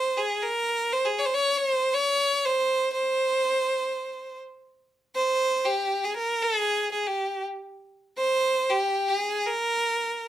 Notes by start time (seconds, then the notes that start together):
Already playing: C5
0.17 G#4
0.42 A#4
0.92 C5
1.05 G#4
1.18 C#5
1.25 C5
1.34 C#5
1.57 C#5
1.68 C5
1.94 C#5
2.45 C5
2.93 C5
5.15 C5
5.65 G4
6.04 G#4
6.16 A#4
6.42 G#4
6.92 G#4
7.06 G4
8.17 C5
8.70 G4
9.08 G#4
9.46 A#4